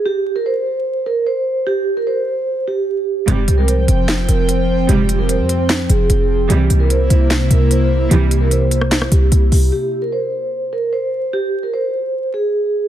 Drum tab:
HH |----------------|----------------|x-x-x-x-x-x-x---|x-x-x-x-x-x-x---|
CP |----------------|----------------|--------x-------|--------x-------|
SD |----------------|----------------|--------o-------|--------o-------|

HH |x-x-x-x-x-x-x---|x-x-x-x-x-x-x-o-|----------------|----------------|
CP |--------x-------|--------x-------|----------------|----------------|
SD |--------o-------|-------ror------|----------------|----------------|